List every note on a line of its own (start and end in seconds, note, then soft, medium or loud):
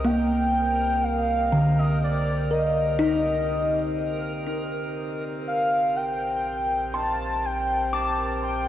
0.00 4.92 C2 medium
0.00 8.68 C3 medium
0.00 8.68 C4 medium
0.00 8.68 A#4 medium
0.05 1.72 A#3 medium
0.05 1.05 G5 loud
1.03 1.80 F5 loud
1.52 3.20 D3 medium
1.79 2.02 D#5 medium
2.04 2.53 D5 medium
2.51 4.93 A#4 soft
2.51 3.00 D#5 medium
2.99 5.16 D#4 medium
2.99 4.45 D#5 medium
4.98 8.68 A#1 medium
5.48 5.97 F5 medium
5.96 6.95 G5 medium
6.94 7.47 A5 loud
6.94 8.12 C6 medium
7.45 7.93 G5 loud
7.93 8.39 A5 loud
7.93 8.68 D6 medium
8.43 8.68 G5 medium